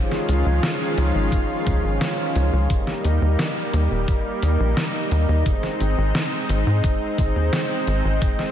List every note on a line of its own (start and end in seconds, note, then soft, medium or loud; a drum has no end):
0.00 2.67 D#3 medium
0.00 2.67 F3 medium
0.00 2.67 G#3 medium
0.00 2.67 C#4 medium
0.00 2.67 F4 medium
0.11 snare soft
0.29 0.43 C#2 loud
0.29 closed hi-hat medium
0.46 0.61 C#2 medium
0.63 snare loud
0.63 closed hi-hat loud
0.98 1.12 C#2 loud
0.98 closed hi-hat medium
1.15 1.30 G#1 medium
1.32 kick loud
1.32 closed hi-hat medium
1.67 1.81 C#2 loud
1.67 kick loud
1.67 closed hi-hat medium
1.84 1.99 G#1 medium
2.01 snare loud
2.01 closed hi-hat medium
2.36 2.50 C#2 medium
2.36 closed hi-hat medium
2.53 2.68 C#2 medium
2.70 5.43 G3 medium
2.70 5.43 A#3 medium
2.70 8.52 D#4 medium
2.70 kick loud
2.70 closed hi-hat medium
2.87 snare soft
3.04 3.19 D#2 medium
3.04 closed hi-hat medium
3.22 3.37 D#2 medium
3.39 snare loud
3.39 closed hi-hat loud
3.73 3.88 D#2 loud
3.73 closed hi-hat medium
3.91 4.06 D#1 medium
4.08 kick loud
4.08 closed hi-hat medium
4.43 4.57 D#2 medium
4.43 closed hi-hat medium
4.60 4.75 A#1 medium
4.77 snare loud
4.77 closed hi-hat loud
5.11 5.26 D#2 loud
5.11 closed hi-hat medium
5.29 5.43 D#2 medium
5.46 8.52 G#3 medium
5.46 8.52 C4 medium
5.46 kick loud
5.46 closed hi-hat medium
5.63 snare soft
5.80 5.95 G#1 medium
5.80 closed hi-hat medium
5.98 6.12 G#1 medium
6.15 snare loud
6.15 closed hi-hat loud
6.49 6.64 G#1 loud
6.49 closed hi-hat medium
6.67 6.81 G#2 medium
6.84 kick loud
6.84 closed hi-hat medium
7.18 7.33 G#1 medium
7.18 kick loud
7.18 closed hi-hat medium
7.36 7.50 D#2 medium
7.53 snare loud
7.53 closed hi-hat loud
7.87 8.02 G#1 loud
7.87 closed hi-hat medium
8.05 8.19 G#1 medium
8.22 kick loud
8.22 closed hi-hat medium
8.39 snare soft